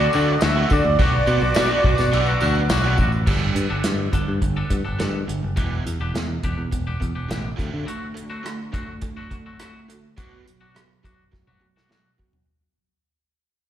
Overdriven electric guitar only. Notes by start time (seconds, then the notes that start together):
0.14 D3 A3 C4 F#4
0.56 D3 A3 C4 F#4
0.72 muted overdriven electric guitar stroke
0.99 F#3 B3 D4 F#4
1.13 muted overdriven electric guitar stroke
1.27 F#3 B3 D4 F#4
1.42 muted overdriven electric guitar stroke
1.57 F#3 B3 D4 F#4
1.71 F#3 B3 D4 F#4
2.12 F#3 B3 D4 F#4
2.40 F#3 B3 D4 F#4
2.84 F#3 B3 D4 F#4
2.98 muted overdriven electric guitar stroke
3.27 G2 D3 G3
3.55 G2 D3
3.84 G2 D3
4.12 G2 D3
4.42 G2 D3
4.71 G2 D3
4.99 G2 D3
5.27 G2 D3
5.56 E2 B2 E3
5.86 E2 B2
6.15 E2 B2
6.44 E2 B2
6.72 E2 B2
7.00 E2 B2
7.29 E2 B2
7.57 D3 A3 C4
7.85 D3 A3
8.14 D3 A3
8.43 D3 A3
8.72 D3 A3
9.02 D3 A3
9.31 D3 A3
9.60 D3 A3
9.89 D3 A3
10.17 B2 F#3 B3
10.46 B2 F#3
10.74 B2 F#3
11.03 B2 F#3
11.31 B2 F#3
11.60 B2 F#3
11.89 B2 F#3
12.18 B2 F#3